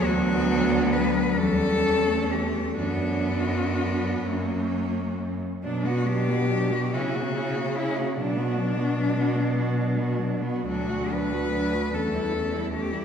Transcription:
<<
  \new Staff \with { instrumentName = "Cello" } { \time 6/8 \key b \minor \tempo 4. = 47 fis'4 b'8 a'4 g'8 | fis'2~ fis'8 r8 | d'16 fis'16 g'4 fis'4 e'16 cis'16 | d'2~ d'8 r8 |
fis'8 b'4 a'4 g'8 | }
  \new Staff \with { instrumentName = "Cello" } { \time 6/8 \key b \minor b4. cis'4. | d'4. cis'4~ cis'16 r16 | d'16 fis'16 d'16 fis'16 d'16 fis'16 e'16 fis'16 e'16 fis'16 e'16 fis'16 | d'16 fis'16 d'16 fis'16 d'16 fis'16 d'16 fis'16 d'16 fis'16 d'16 fis'16 |
d'16 fis'16 d'16 fis'16 d'16 fis'16 cis'16 e'16 cis'16 e'16 cis'16 e'16 | }
  \new Staff \with { instrumentName = "Cello" } { \time 6/8 \key b \minor fis4. g8. a8. | b4. ais4~ ais16 r16 | fis16 b16 fis16 b16 fis16 b16 cis'16 ais16 cis'16 ais16 cis'16 ais16 | fis16 b16 fis16 b16 fis16 b16 fis16 b16 fis16 b16 fis16 b16 |
fis16 a16 fis16 a16 fis16 a16 a16 g16 a16 g16 a16 g16 | }
  \new Staff \with { instrumentName = "Cello" } { \clef bass \time 6/8 \key b \minor d,4. e,4. | fis,4. fis,4~ fis,16 r16 | b,4. cis4. | b,2. |
d,4. e,4. | }
>>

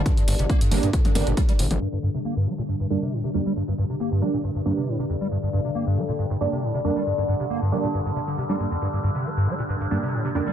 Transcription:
<<
  \new Staff \with { instrumentName = "Synth stab" } { \time 4/4 \key g \minor \tempo 4 = 137 r4. <g bes d'>16 r8. <g bes d'>16 r4 r16 | r2 r8 <g bes d'>16 r8. <g bes d'>16 r16 | r4. <g bes d'>16 r8. <g bes d'>16 r4 r16 | r2 r8 <g bes d'>16 r8. <g bes d'>16 r16 |
r4. <g bes d'>16 r4. <g bes d'>16 r8 | r2 r8 <g bes d'>16 r8. <g bes d'>16 r16 | }
  \new Staff \with { instrumentName = "Synth drone" } { \clef bass \time 4/4 \key g \minor <g, d>1 | <g, d>1~ | <g, d>1~ | <g, d>1~ |
<g, d>1~ | <g, d>1 | }
  \new Staff \with { instrumentName = "Acid bass" } { \clef bass \time 4/4 \key g \minor g,16 g,16 g,16 c16 bes16 g,16 g16 bes,16 g,16 g,16 g,16 bes,16 g16 g16 a,16 g,,16 | g,16 g,16 g,16 c16 bes16 g,16 g16 bes,16 g,16 g,16 g,16 c16 a,16 c16 f,16 g16 | g,16 g,16 g,16 c16 bes16 g,16 g16 bes,16 g,16 g,16 g,16 c16 a,16 c16 f,16 g16 | g,16 g,16 g,16 c16 bes16 g,16 g16 bes,16 g,16 g,16 g,16 c16 a,16 c16 f,16 g16 |
g,16 g,16 g,16 c16 bes16 g,16 g16 bes,16 g,16 g,16 c16 d16 c16 g16 g,16 f,16 | g,16 g,16 g,16 c16 f16 g,16 g16 bes,16 g,16 g,16 g,16 c16 a,16 c16 f,16 g16 | }
  \new Staff \with { instrumentName = "Analog synth bass" } { \clef bass \time 4/4 \key g \minor r8 g,,16 g,,16 r8 g,,16 g,16 r8 g,,16 g,,16 r8 g,,16 g,,16 | r1 | r1 | r1 |
r1 | r1 | }
  \new DrumStaff \with { instrumentName = "Drums" } \drummode { \time 4/4 <hh bd>16 hh16 hho16 hh16 <hh bd>16 hh16 hho16 hh16 <hh bd>16 <hh toml>16 <hho toml>16 hh16 <hh bd>16 hh16 hho16 <hh toml>16 | r4 r4 r4 r4 | r4 r4 r4 r4 | r4 r4 r4 r4 |
r4 r4 r4 r4 | r4 r4 r4 r4 | }
>>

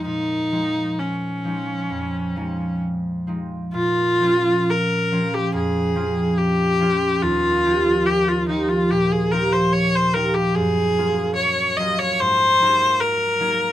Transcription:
<<
  \new Staff \with { instrumentName = "Viola" } { \time 4/4 \key bes \dorian \tempo 4 = 72 ees'4 des'2 r4 | f'4 bes'8. g'16 aes'4 g'4 | f'4 g'16 f'16 ees'16 f'16 g'16 aes'16 bes'16 c''16 des''16 c''16 bes'16 g'16 | aes'4 des''8 ees''16 des''16 c''4 bes'4 | }
  \new Staff \with { instrumentName = "Harp" } { \time 4/4 \key bes \dorian <bes, f aes c' ees' f'>8 <f aes c' ees'>4 <f aes c' ees'>8 f,8 <f aes c' ees'>4 <f aes c' ees'>8 | bes,8 <f c' des' f'>4 <f c' des' f'>8 f,8 <f c' des' f'>4 <f c' des' f'>8 | ees,8 <f c' ees' g'>4 <f c' ees' g'>8 bes,8 <f c' ees' g'>4 <f c' ees' g'>8 | ges,8 <ges bes f' aes'>4 <ges bes f' aes'>8 aes,8 <ges bes ees' aes'>4 <ges bes ees' aes'>8 | }
>>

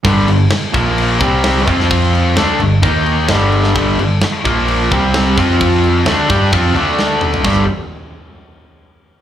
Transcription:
<<
  \new Staff \with { instrumentName = "Distorted electric guitar" } { \clef bass \time 4/4 \key g \minor \tempo 4 = 130 <g, d g>8 <g, d>8 r8 <bes, f bes>4 <c g c'>4 <f c' f'>8~ | <f c' f'>4 <d a d'>8 <g, d>8 <ees bes ees'>4 <g, d g>4 | <g, d g>8 <g, d>8 r8 <bes, f bes>4 <c g c'>4 <f c' f'>8~ | <f c' f'>4 <d a d'>8 <g d' g'>8 <f c' f'>8 <d a d'>4. |
<g, d g>8 r2. r8 | }
  \new Staff \with { instrumentName = "Distorted electric guitar" } { \clef bass \time 4/4 \key g \minor <g, d g>8 <g, d>8 r8 <bes, f bes>4 <c g c'>4 <f c' f'>8~ | <f c' f'>4 <d a d'>8 <g, d>8 <ees bes ees'>4 <g, d g>4 | <g, d g>8 <g, d>8 r8 <bes, f bes>4 <c g c'>4 <f c' f'>8~ | <f c' f'>4 <d a d'>8 <g d' g'>8 <f c' f'>8 <d a d'>4. |
<g, d g>8 r2. r8 | }
  \new Staff \with { instrumentName = "Picked electric bass" } { \clef bass \time 4/4 \key g \minor g,,8 g,,8 r8 bes,,4 c,4 f,8~ | f,4 d,8 g,,8 ees,4 g,,4 | g,,8 g,,8 r8 bes,,4 c,4 f,8~ | f,4 d,8 g,8 f,8 d,4. |
g,,8 r2. r8 | }
  \new DrumStaff \with { instrumentName = "Drums" } \drummode { \time 4/4 <cymc bd>8 cymc8 <cymc sn>8 <cymc bd>8 cymc8 <cymc bd>8 <cymc sn>8 <cymc bd>16 sn16 | <cymc bd>8 cymc8 <cymc sn>8 cymc8 <cymc bd>8 cymc8 <cymc sn>8 cymc16 sn16 | <cymc bd>8 cymc8 <cymc sn>8 <cymc bd>8 cymc8 <cymc bd>8 <cymc sn>8 <cymc bd sn>8 | <cymc bd>8 cymc8 <cymc sn>8 <cymc bd>8 <cymc bd>8 cymc8 sn8 toml16 tomfh16 |
<cymc bd>4 r4 r4 r4 | }
>>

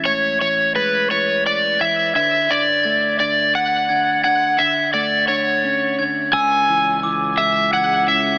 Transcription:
<<
  \new Staff \with { instrumentName = "Glockenspiel" } { \time 6/8 \key d \lydian \tempo 4. = 57 gis'''4 a'''8 a'''4 gis'''8 | gis'''4 a'''8 a'''4 gis'''8 | gis'''4 a'''8 a'''4 gis'''8 | e'''4 d'''8 e'''8 gis'''4 | }
  \new Staff \with { instrumentName = "Electric slide guitar" } { \time 6/8 \key d \lydian cis''8 cis''8 b'8 cis''8 d''8 e''8 | e''8 d''4 d''8 fis''4 | fis''8 e''8 d''8 cis''4 r8 | gis''4 r8 e''8 fis''8 e''8 | }
  \new Staff \with { instrumentName = "Ambient pad" } { \time 6/8 \key d \lydian r2. | r2. | r2. | <e gis cis' gis'>2. | }
  \new Staff \with { instrumentName = "Clean electric guitar" } { \clef bass \time 6/8 \key d \lydian <a, e gis cis'>8 e8 gis8 e4 e8 | d8 d8 a8 d4 d8 | d8 d8 a8 d8 cis'8 d8 | cis8 e8 e8 gis8 e8 cis'8 | }
  \new Staff \with { instrumentName = "Fingered electric bass" } { \clef bass \time 6/8 \key d \lydian r2. | r2. | r2. | cis,2. | }
>>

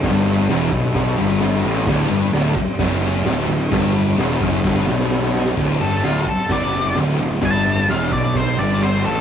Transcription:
<<
  \new Staff \with { instrumentName = "Lead electric guitar" } { \time 4/4 \key d \mixolydian \tempo 4 = 130 r1 | r1 | r1 | r8 a'8 f'8 a'8 d''4 r4 |
a''4 f''8 d''8 c''8 d''8 c''8 a'8 | }
  \new Staff \with { instrumentName = "Distorted electric guitar" } { \clef bass \time 4/4 \key d \mixolydian g,4 e,8 b,4 g,4 a,8 | d,8 g,8 d,8 r8 fis,4 d,8 d,8 | g,4 e,8 fis,8 g,8 b,4. | d,8 g,8 d,8 r8 fis,4 d,8 d,8 |
g,4 e,8 b,4 g,4 a,8 | }
  \new Staff \with { instrumentName = "Picked electric bass" } { \clef bass \time 4/4 \key d \mixolydian g,,4 e,,8 b,,4 g,,4 a,,8 | d,,8 g,,8 d,,8 r8 fis,,4 d,,8 d,,8 | g,,4 e,,8 fis,,8 g,,8 b,,4. | d,,8 g,,8 d,,8 r8 fis,,4 d,,8 d,,8 |
g,,4 e,,8 b,,4 g,,4 a,,8 | }
  \new DrumStaff \with { instrumentName = "Drums" } \drummode { \time 4/4 <cymc bd sn>4 <cymc sn>8 bd8 <cymc bd sn>4 <cymc sn>4 | <cymc bd sn>4 <cymc sn>8 bd8 <cymc bd sn>4 <cymc sn>4 | <cymc bd sn>4 <cymc sn>8 bd8 <bd sn>16 sn16 sn16 sn16 sn16 sn16 sn16 sn16 | <cymc bd sn>4 <cymc sn>8 bd8 <cymc bd sn>4 <cymc sn>4 |
<cymc bd sn>4 <cymc sn>8 bd8 <cymc bd sn>4 <cymc sn>4 | }
>>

